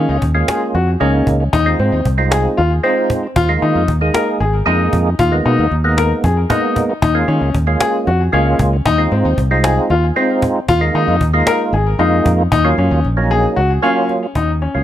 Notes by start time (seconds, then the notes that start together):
Already playing: G#3 A#3 C#4 F4
0.09 C#2
0.22 D#2, cajon bass
0.35 G#3 A#3 C#4 F4
0.48 G#4, cajon slap
0.75 F2 F#4, cajon slap
1.00 C#2 G#3 A#3 C#4 D#4, cajon slap
1.27 C#2, cajon bass
1.53 D#2 D#4, cajon bass
1.66 G#3 C4 D#4 F4
1.79 G#2 C4, cajon slap
1.92 D#2
2.05 C2, cajon bass
2.18 G#3 C4 D#4 F4
2.31 G#4, cajon slap
2.57 D#2 F4, cajon slap
2.83 G#3 C4 D#4 F4, cajon slap
3.10 cajon bass
3.36 D#2 F4, cajon bass
3.49 G#3 A#3 D#4 F4
3.62 D#3 D#4, cajon slap
3.75 F2
3.88 D#2, cajon bass
4.01 G#3 A#3 D#4 G#4
4.14 A#4, cajon slap
4.40 G#1 G#4, cajon slap
4.66 F2 G#3 A#3 D#4 G#4, cajon slap
4.93 F2, cajon bass
5.19 D#2 F4, cajon bass
5.32 G#3 A#3 B3 D#4
5.45 B2 D#4, cajon slap
5.59 D#2
5.71 D#2, cajon slap
5.84 G#3 A#3 B3 D#4
5.97 A#4, cajon slap
6.24 F2 G#4, cajon bass
6.50 G#3 A#3 B3 D#4, cajon bass
6.76 cajon bass
7.02 D#2 D#4, cajon bass
7.15 G#3 A#3 C#4 F4
7.28 D#3 C#4, cajon slap
7.41 C#2
7.55 D#2, cajon bass
7.67 G#3 A#3 C#4 F4
7.81 G#4, cajon slap
8.07 F2 F#4, cajon slap
8.33 C#2 G#3 A#3 C#4 F4, cajon slap
8.59 C#2, cajon bass
8.86 D#2 D#4, cajon bass
8.98 G#3 C4 D#4 F4
9.12 G#2 C4, cajon slap
9.25 D#2
9.38 C2, cajon bass
9.51 G#3 C4 D#4 F4
9.64 G#4, cajon slap
9.90 D#2 F4, cajon slap
10.16 G#3 C4 D#4 F4, cajon slap
10.42 cajon bass
10.68 D#2 F4, cajon bass
10.81 G#3 A#3 D#4 F4
10.94 D#3 D#4, cajon slap
11.08 F2
11.21 D#2, cajon bass
11.34 G#3 A#3 D#4 F4
11.47 A#4, cajon slap
11.73 G#1 G#4, cajon slap
11.99 F2 G#3 A#3 D#4 F4, cajon slap
12.26 F2, cajon bass
12.52 D#2 D#4, cajon bass
12.64 F#3 A#3 C#4 F4
12.78 F#2 C#4, cajon slap
12.91 D#2
13.04 A#1, cajon slap
13.17 F#3 A#3 C#4 D#4
13.31 G#4, cajon slap
13.56 C#2 F#4, cajon slap
13.82 F#3 A#3 C#4 F4, cajon slap
14.09 cajon slap
14.35 D#2 D#4, cajon bass
14.62 C#4, cajon slap
14.74 C#2 F#3 A#3 C#4 F4